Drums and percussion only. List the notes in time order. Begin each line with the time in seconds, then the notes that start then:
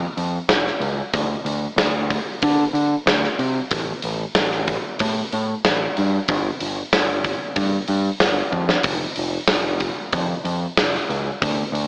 0.18 open hi-hat
0.49 snare, open hi-hat
0.67 snare
0.82 open hi-hat
1.14 kick, open hi-hat
1.46 open hi-hat
1.78 snare, open hi-hat
2.10 kick, open hi-hat
2.42 kick, open hi-hat
2.75 open hi-hat
3.07 snare, open hi-hat
3.24 snare
3.39 open hi-hat
3.71 kick, open hi-hat
4.02 open hi-hat
4.35 snare, open hi-hat
4.51 snare
4.67 kick, open hi-hat
4.99 kick, open hi-hat
5.32 open hi-hat
5.65 snare, open hi-hat
5.97 open hi-hat
6.28 kick, open hi-hat
6.60 open hi-hat
6.93 snare, open hi-hat
7.24 kick, open hi-hat
7.56 kick, open hi-hat
7.88 open hi-hat
8.20 snare, open hi-hat
8.53 kick
8.69 snare
8.83 kick, open hi-hat
9.16 open hi-hat
9.48 snare, open hi-hat
9.80 kick, open hi-hat
10.13 kick, open hi-hat
10.45 open hi-hat
10.77 snare, open hi-hat
10.94 snare
11.10 open hi-hat
11.42 kick, open hi-hat
11.75 open hi-hat